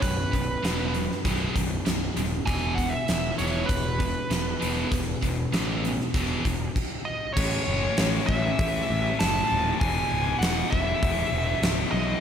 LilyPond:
<<
  \new Staff \with { instrumentName = "Lead electric guitar" } { \time 4/4 \key e \major \tempo 4 = 98 b'2 r2 | gis''8 fis''16 e''8. cis''8 b'2~ | b'2. r8 dis''8 | cis''4. e''4. a''4 |
gis''4 fis''8 e''2 dis''8 | }
  \new Staff \with { instrumentName = "Distorted electric guitar" } { \clef bass \time 4/4 \key e \major <b,, fis,>8 <b,, fis,>8 <b,, fis, b,>8 <b,, fis,>8 <b,, fis, b,>8 <b,, fis,>8 <b,, fis,>8 <b,, fis,>8 | <e, b, e>8 <e, b,>8 <e, b,>8 <e, b, e>8 <e, b,>8 <e, b,>8 <e, b,>8 <e, b, e>8 | <e, b,>8 <e, b,>8 <e, b, e>8 <e, b,>8 <e, b, e>8 <e, b,>8 r4 | <a, e a>1 |
<e, b, e>1 | }
  \new Staff \with { instrumentName = "Distorted electric guitar" } { \clef bass \time 4/4 \key e \major <b,, fis,>8 <b,, fis,>8 <b,, fis, b,>8 <b,, fis,>8 <b,, fis, b,>8 <b,, fis,>8 <b,, fis,>8 <b,, fis,>8 | <e, b, e>8 <e, b,>8 <e, b,>8 <e, b, e>8 <e, b,>8 <e, b,>8 <e, b,>8 <e, b, e>8 | <e, b,>8 <e, b,>8 <e, b, e>8 <e, b,>8 <e, b, e>8 <e, b,>8 r4 | r1 |
r1 | }
  \new Staff \with { instrumentName = "Picked electric bass" } { \clef bass \time 4/4 \key e \major b,,,8 b,,,8 e,,4 b,,,8 b,,,8 b,,,8 dis,,8 | e,,4 e,,8 e,,8 e,,4 e,,8 e,,8 | e,,8 e,,8 a,,4 e,,8 e,,8 r4 | a,,8 fis,,8 a,,8 a,,8 a,,8 a,,8 fis,,8 dis,,8 |
e,,8 cis,,8 e,,8 e,,8 e,,8 e,,8 cis,,8 b,,8 | }
  \new DrumStaff \with { instrumentName = "Drums" } \drummode { \time 4/4 <hh bd>8 <hh bd>8 <hh sn>8 hh16 sn16 <hh bd>8 <hh bd>8 <hh sn>8 hh8 | <hh bd>8 <hh bd>8 <hh sn>8 hh8 <hh bd>8 <hh bd>8 <hh sn>8 hh8 | <hh bd>8 <hh bd>8 <hh sn>8 hh16 sn16 <hh bd>8 <hh bd>8 <cymc bd>4 | <cymc bd>4 <hho sn>8 bd8 <hho bd>4 <hho sn>4 |
<hho bd>4 <hho sn>8 bd8 <hho bd>4 <hho sn>4 | }
>>